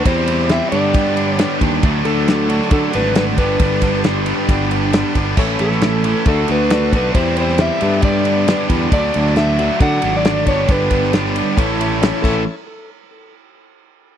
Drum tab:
CC |----------------|----------------|----------------|x---------------|
RD |x-x-x-x-x-x-x-x-|x-x-x-x-x-x-x-x-|x-x-x-x-x-x-x-x-|--x-x-x-x-x-x-x-|
SD |---oo-------o---|----o--o----o---|---oo-------o---|---oo-------o---|
BD |o-------o-----o-|o-------o-----o-|o-o-----o-----o-|o-------o-----o-|

CC |----------------|----------------|--------------x-|----------------|
RD |x-x-x-x-x-x-x-x-|x-x-x-x-x-x-x-x-|x-x-x-x-x-x-x---|----------------|
SD |---oo-------o---|---oo-------o---|---ooo------o---|----------------|
BD |o-------o-----o-|o-------o-----o-|o-o-----o-----o-|----------------|